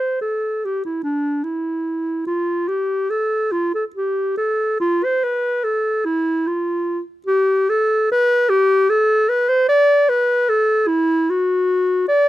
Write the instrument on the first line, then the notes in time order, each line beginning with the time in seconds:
clarinet
Already playing: C5
0.21 A4
0.65 G4
0.85 E4
1.03 D4
1.44 E4
2.27 F4
2.68 G4
3.10 A4
3.52 F4
3.75 A4
3.96 G4
4.37 A4
4.80 F4
5.04 C5
5.24 B4
5.64 A4
6.05 E4
6.47 F4
7.26 G4
7.69 A4
8.11 B4
8.49 G4
8.89 A4
9.29 B4
9.49 C5
9.68 D5
10.09 B4
10.49 A4
10.87 E4
11.30 F#4
12.08 D5